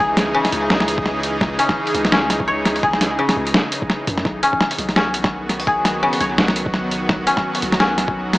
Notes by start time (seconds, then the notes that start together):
Already playing: C#2 C#3 E3 C#4 D#4 G#4 C#5
0.00 G#4
0.17 snare, closed hi-hat
0.34 C#3
0.45 snare, open hi-hat
0.52 C#2, closed hi-hat
0.70 C#2, snare
0.80 snare
0.88 closed hi-hat
0.98 kick
1.06 snare
1.23 closed hi-hat
1.41 C#2, kick, snare
1.59 C#4, closed hi-hat
1.69 kick, snare
1.87 open hi-hat
1.94 C#2, closed hi-hat
2.05 snare, open hi-hat
2.12 C#4, snare
2.30 snare, closed hi-hat
2.40 kick
2.48 C#5
2.65 snare, closed hi-hat
2.76 open hi-hat
2.83 G#4, kick
2.93 snare
3.01 snare, closed hi-hat
3.19 C#3
3.29 snare, open hi-hat
3.36 C#2
3.47 closed hi-hat
3.54 snare
3.72 closed hi-hat
3.82 kick
3.90 snare
4.07 F#2, kick, closed hi-hat
4.18 snare
4.25 B1 D#3 F#3 B3 F#4, kick, snare
4.43 C#4, closed hi-hat
4.53 kick
4.61 snare
4.71 open hi-hat
4.78 B1, closed hi-hat
4.89 snare, open hi-hat
4.96 C#4, snare
5.14 closed hi-hat
5.24 kick, snare
5.49 snare, closed hi-hat
5.60 open hi-hat
5.67 G#4, kick
5.85 snare, closed hi-hat
6.03 C#3
6.13 open hi-hat
6.20 B1 C#5, closed hi-hat
6.38 B1, snare
6.48 snare
6.56 closed hi-hat
6.66 kick
6.74 snare
6.91 closed hi-hat
7.09 B1, kick, snare
7.27 C#4, closed hi-hat
7.37 kick, snare
7.55 open hi-hat
7.62 B1, closed hi-hat
7.72 snare, open hi-hat
7.80 C#4, snare
7.98 snare, closed hi-hat
8.08 kick
8.33 snare, closed hi-hat